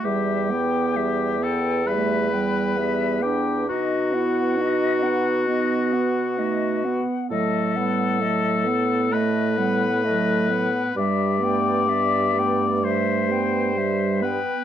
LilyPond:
<<
  \new Staff \with { instrumentName = "Flute" } { \time 4/4 \key e \minor \tempo 4 = 66 e''8 g''8 e''8 g''8 e''8 g''8 e''8 g''8 | dis''8 fis''8 dis''8 fis''8 dis''8 fis''8 dis''8 fis''8 | dis''8 fis''8 dis''8 fis''8 dis''8 fis''8 dis''8 fis''8 | e''8 g''8 e''8 g''8 e''8 g''8 e''8 g''8 | }
  \new Staff \with { instrumentName = "Oboe" } { \time 4/4 \key e \minor g'4. a'8 b'4. g'8 | fis'2.~ fis'8 r8 | a'2 b'2 | d''2 c''4. b'8 | }
  \new Staff \with { instrumentName = "French horn" } { \time 4/4 \key e \minor g8 b8 g8 b8 g8 b8 g8 b8 | dis'8 b8 dis'8 b8 dis'8 b8 dis'8 b8 | a8 b8 a8 b8 a8 b8 a8 b8 | g8 b8 g8 b8 g8 b8 g8 b8 | }
  \new Staff \with { instrumentName = "Clarinet" } { \time 4/4 \key e \minor g8 b4 r8 a8 g8 b8 d'8 | dis'8 e'8 dis'4 b4 a8 b8 | fis8 g8 fis8 b8 a8 g8 fis8 r8 | g8 a8 b8 a4. g8 b8 | }
  \new Staff \with { instrumentName = "Bassoon" } { \clef bass \time 4/4 \key e \minor e,1 | b,2.~ b,8 r8 | a,1 | g,2.~ g,8 r8 | }
>>